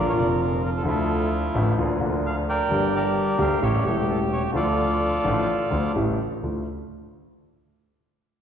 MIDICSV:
0, 0, Header, 1, 4, 480
1, 0, Start_track
1, 0, Key_signature, -1, "minor"
1, 0, Tempo, 464037
1, 881, Time_signature, 4, 2, 24, 8
1, 8703, End_track
2, 0, Start_track
2, 0, Title_t, "Bandoneon"
2, 0, Program_c, 0, 23
2, 0, Note_on_c, 0, 65, 60
2, 0, Note_on_c, 0, 70, 63
2, 96, Note_on_c, 0, 73, 71
2, 138, Note_off_c, 0, 73, 0
2, 192, Note_on_c, 0, 74, 75
2, 293, Note_off_c, 0, 74, 0
2, 423, Note_off_c, 0, 70, 0
2, 438, Note_on_c, 0, 70, 68
2, 644, Note_off_c, 0, 70, 0
2, 684, Note_on_c, 0, 70, 68
2, 728, Note_off_c, 0, 70, 0
2, 800, Note_on_c, 0, 69, 65
2, 859, Note_off_c, 0, 65, 0
2, 899, Note_on_c, 0, 64, 50
2, 901, Note_on_c, 0, 65, 48
2, 902, Note_off_c, 0, 69, 0
2, 918, Note_on_c, 0, 69, 64
2, 1344, Note_off_c, 0, 69, 0
2, 1801, Note_off_c, 0, 64, 0
2, 1802, Note_off_c, 0, 65, 0
2, 2338, Note_on_c, 0, 77, 85
2, 2439, Note_off_c, 0, 77, 0
2, 2579, Note_on_c, 0, 74, 68
2, 2580, Note_on_c, 0, 79, 92
2, 2581, Note_on_c, 0, 70, 69
2, 3039, Note_off_c, 0, 74, 0
2, 3052, Note_off_c, 0, 70, 0
2, 3054, Note_on_c, 0, 74, 87
2, 3055, Note_off_c, 0, 79, 0
2, 3067, Note_on_c, 0, 70, 67
2, 3071, Note_on_c, 0, 67, 70
2, 3529, Note_on_c, 0, 77, 91
2, 3532, Note_off_c, 0, 74, 0
2, 3722, Note_off_c, 0, 70, 0
2, 3724, Note_off_c, 0, 67, 0
2, 3748, Note_on_c, 0, 76, 93
2, 3749, Note_on_c, 0, 67, 68
2, 3754, Note_on_c, 0, 73, 66
2, 3762, Note_off_c, 0, 77, 0
2, 3800, Note_off_c, 0, 76, 0
2, 3860, Note_on_c, 0, 74, 75
2, 3973, Note_off_c, 0, 73, 0
2, 3985, Note_off_c, 0, 74, 0
2, 3989, Note_on_c, 0, 73, 82
2, 4095, Note_off_c, 0, 73, 0
2, 4232, Note_on_c, 0, 69, 70
2, 4338, Note_off_c, 0, 69, 0
2, 4476, Note_on_c, 0, 73, 78
2, 4580, Note_off_c, 0, 73, 0
2, 4664, Note_off_c, 0, 67, 0
2, 4711, Note_on_c, 0, 69, 60
2, 4712, Note_on_c, 0, 65, 62
2, 4722, Note_on_c, 0, 74, 87
2, 6118, Note_off_c, 0, 69, 0
2, 6119, Note_off_c, 0, 65, 0
2, 6124, Note_off_c, 0, 74, 0
2, 8703, End_track
3, 0, Start_track
3, 0, Title_t, "Grand piano"
3, 0, Program_c, 1, 0
3, 0, Note_on_c, 1, 34, 82
3, 0, Note_on_c, 1, 46, 81
3, 0, Note_on_c, 1, 50, 69
3, 0, Note_on_c, 1, 53, 64
3, 0, Note_on_c, 1, 58, 63
3, 0, Note_on_c, 1, 65, 75
3, 125, Note_off_c, 1, 50, 0
3, 126, Note_off_c, 1, 46, 0
3, 126, Note_off_c, 1, 53, 0
3, 128, Note_off_c, 1, 34, 0
3, 129, Note_off_c, 1, 58, 0
3, 129, Note_off_c, 1, 65, 0
3, 143, Note_on_c, 1, 50, 64
3, 156, Note_on_c, 1, 53, 61
3, 164, Note_on_c, 1, 29, 70
3, 165, Note_on_c, 1, 41, 73
3, 171, Note_on_c, 1, 58, 54
3, 179, Note_on_c, 1, 65, 69
3, 835, Note_off_c, 1, 50, 0
3, 842, Note_off_c, 1, 53, 0
3, 846, Note_off_c, 1, 29, 0
3, 846, Note_off_c, 1, 41, 0
3, 849, Note_off_c, 1, 58, 0
3, 853, Note_off_c, 1, 65, 0
3, 860, Note_on_c, 1, 50, 76
3, 866, Note_on_c, 1, 53, 59
3, 878, Note_on_c, 1, 38, 73
3, 885, Note_on_c, 1, 57, 60
3, 904, Note_on_c, 1, 76, 63
3, 1553, Note_off_c, 1, 53, 0
3, 1558, Note_off_c, 1, 38, 0
3, 1560, Note_off_c, 1, 50, 0
3, 1562, Note_off_c, 1, 57, 0
3, 1571, Note_off_c, 1, 76, 0
3, 1599, Note_on_c, 1, 33, 86
3, 1600, Note_on_c, 1, 50, 69
3, 1600, Note_on_c, 1, 53, 62
3, 1601, Note_on_c, 1, 57, 66
3, 1604, Note_on_c, 1, 45, 82
3, 1606, Note_on_c, 1, 64, 82
3, 1797, Note_off_c, 1, 33, 0
3, 1797, Note_off_c, 1, 50, 0
3, 1797, Note_off_c, 1, 53, 0
3, 1798, Note_off_c, 1, 57, 0
3, 1800, Note_off_c, 1, 45, 0
3, 1801, Note_off_c, 1, 64, 0
3, 1841, Note_on_c, 1, 50, 82
3, 1847, Note_on_c, 1, 38, 79
3, 1847, Note_on_c, 1, 53, 60
3, 1849, Note_on_c, 1, 58, 60
3, 1850, Note_on_c, 1, 65, 78
3, 2039, Note_off_c, 1, 50, 0
3, 2040, Note_off_c, 1, 38, 0
3, 2040, Note_off_c, 1, 53, 0
3, 2041, Note_off_c, 1, 58, 0
3, 2042, Note_off_c, 1, 65, 0
3, 2058, Note_on_c, 1, 50, 62
3, 2070, Note_on_c, 1, 53, 60
3, 2073, Note_off_c, 1, 50, 0
3, 2077, Note_on_c, 1, 38, 68
3, 2079, Note_on_c, 1, 50, 74
3, 2083, Note_on_c, 1, 58, 60
3, 2094, Note_on_c, 1, 65, 68
3, 2751, Note_off_c, 1, 53, 0
3, 2754, Note_off_c, 1, 38, 0
3, 2755, Note_off_c, 1, 50, 0
3, 2757, Note_off_c, 1, 58, 0
3, 2763, Note_off_c, 1, 65, 0
3, 2785, Note_on_c, 1, 50, 66
3, 2803, Note_on_c, 1, 43, 76
3, 2803, Note_on_c, 1, 55, 57
3, 2804, Note_on_c, 1, 31, 79
3, 2807, Note_on_c, 1, 58, 57
3, 2826, Note_on_c, 1, 67, 66
3, 3467, Note_off_c, 1, 50, 0
3, 3475, Note_off_c, 1, 43, 0
3, 3476, Note_off_c, 1, 31, 0
3, 3476, Note_off_c, 1, 55, 0
3, 3478, Note_off_c, 1, 58, 0
3, 3485, Note_off_c, 1, 67, 0
3, 3496, Note_on_c, 1, 50, 77
3, 3498, Note_on_c, 1, 38, 78
3, 3500, Note_on_c, 1, 58, 66
3, 3500, Note_on_c, 1, 67, 75
3, 3504, Note_on_c, 1, 55, 67
3, 3702, Note_off_c, 1, 38, 0
3, 3702, Note_off_c, 1, 50, 0
3, 3703, Note_off_c, 1, 58, 0
3, 3703, Note_off_c, 1, 67, 0
3, 3704, Note_off_c, 1, 55, 0
3, 3743, Note_on_c, 1, 55, 64
3, 3746, Note_on_c, 1, 33, 83
3, 3746, Note_on_c, 1, 49, 74
3, 3749, Note_on_c, 1, 57, 66
3, 3751, Note_on_c, 1, 64, 78
3, 3752, Note_on_c, 1, 45, 83
3, 3944, Note_off_c, 1, 55, 0
3, 3945, Note_off_c, 1, 49, 0
3, 3946, Note_off_c, 1, 33, 0
3, 3947, Note_off_c, 1, 57, 0
3, 3948, Note_off_c, 1, 45, 0
3, 3948, Note_off_c, 1, 64, 0
3, 3972, Note_on_c, 1, 49, 60
3, 3980, Note_on_c, 1, 55, 63
3, 3986, Note_on_c, 1, 40, 71
3, 3990, Note_on_c, 1, 28, 76
3, 3996, Note_on_c, 1, 57, 59
3, 4008, Note_on_c, 1, 64, 71
3, 4661, Note_off_c, 1, 49, 0
3, 4665, Note_off_c, 1, 55, 0
3, 4668, Note_off_c, 1, 40, 0
3, 4670, Note_off_c, 1, 28, 0
3, 4673, Note_off_c, 1, 57, 0
3, 4676, Note_on_c, 1, 50, 79
3, 4679, Note_off_c, 1, 64, 0
3, 4693, Note_on_c, 1, 53, 59
3, 4696, Note_on_c, 1, 38, 75
3, 4699, Note_on_c, 1, 57, 58
3, 4717, Note_on_c, 1, 65, 76
3, 5384, Note_off_c, 1, 53, 0
3, 5386, Note_off_c, 1, 38, 0
3, 5386, Note_off_c, 1, 50, 0
3, 5387, Note_off_c, 1, 57, 0
3, 5396, Note_off_c, 1, 65, 0
3, 5421, Note_on_c, 1, 53, 63
3, 5423, Note_on_c, 1, 45, 84
3, 5426, Note_on_c, 1, 33, 83
3, 5426, Note_on_c, 1, 50, 71
3, 5428, Note_on_c, 1, 57, 60
3, 5430, Note_on_c, 1, 65, 80
3, 5627, Note_off_c, 1, 53, 0
3, 5628, Note_off_c, 1, 45, 0
3, 5629, Note_off_c, 1, 33, 0
3, 5629, Note_off_c, 1, 50, 0
3, 5630, Note_off_c, 1, 57, 0
3, 5631, Note_off_c, 1, 65, 0
3, 5900, Note_on_c, 1, 50, 71
3, 5900, Note_on_c, 1, 53, 53
3, 5902, Note_on_c, 1, 57, 54
3, 5903, Note_on_c, 1, 38, 73
3, 5909, Note_on_c, 1, 65, 67
3, 6111, Note_off_c, 1, 53, 0
3, 6111, Note_off_c, 1, 57, 0
3, 6112, Note_off_c, 1, 38, 0
3, 6112, Note_off_c, 1, 50, 0
3, 6115, Note_off_c, 1, 65, 0
3, 6155, Note_on_c, 1, 33, 72
3, 6155, Note_on_c, 1, 49, 62
3, 6158, Note_on_c, 1, 55, 56
3, 6159, Note_on_c, 1, 45, 78
3, 6160, Note_on_c, 1, 57, 61
3, 6160, Note_on_c, 1, 64, 69
3, 6361, Note_off_c, 1, 33, 0
3, 6361, Note_off_c, 1, 49, 0
3, 6362, Note_off_c, 1, 55, 0
3, 6363, Note_off_c, 1, 45, 0
3, 6363, Note_off_c, 1, 57, 0
3, 6363, Note_off_c, 1, 64, 0
3, 6651, Note_on_c, 1, 57, 41
3, 6652, Note_on_c, 1, 38, 46
3, 6656, Note_on_c, 1, 62, 42
3, 6658, Note_on_c, 1, 65, 50
3, 6849, Note_off_c, 1, 57, 0
3, 6850, Note_off_c, 1, 38, 0
3, 6852, Note_off_c, 1, 62, 0
3, 6853, Note_off_c, 1, 65, 0
3, 8703, End_track
4, 0, Start_track
4, 0, Title_t, "Double bass"
4, 0, Program_c, 2, 43
4, 0, Note_on_c, 2, 34, 84
4, 129, Note_off_c, 2, 34, 0
4, 177, Note_on_c, 2, 29, 84
4, 852, Note_off_c, 2, 29, 0
4, 891, Note_on_c, 2, 38, 87
4, 1565, Note_off_c, 2, 38, 0
4, 1607, Note_on_c, 2, 33, 78
4, 1801, Note_off_c, 2, 33, 0
4, 1839, Note_on_c, 2, 38, 87
4, 2036, Note_off_c, 2, 38, 0
4, 2077, Note_on_c, 2, 38, 84
4, 2754, Note_off_c, 2, 38, 0
4, 2797, Note_on_c, 2, 31, 87
4, 3472, Note_off_c, 2, 31, 0
4, 3517, Note_on_c, 2, 38, 88
4, 3711, Note_off_c, 2, 38, 0
4, 3746, Note_on_c, 2, 33, 90
4, 3946, Note_off_c, 2, 33, 0
4, 3992, Note_on_c, 2, 28, 81
4, 4671, Note_off_c, 2, 28, 0
4, 4701, Note_on_c, 2, 38, 96
4, 5389, Note_off_c, 2, 38, 0
4, 5438, Note_on_c, 2, 33, 82
4, 5635, Note_off_c, 2, 33, 0
4, 5916, Note_on_c, 2, 38, 83
4, 6119, Note_off_c, 2, 38, 0
4, 6156, Note_on_c, 2, 33, 83
4, 6361, Note_off_c, 2, 33, 0
4, 6651, Note_on_c, 2, 38, 51
4, 6849, Note_off_c, 2, 38, 0
4, 8703, End_track
0, 0, End_of_file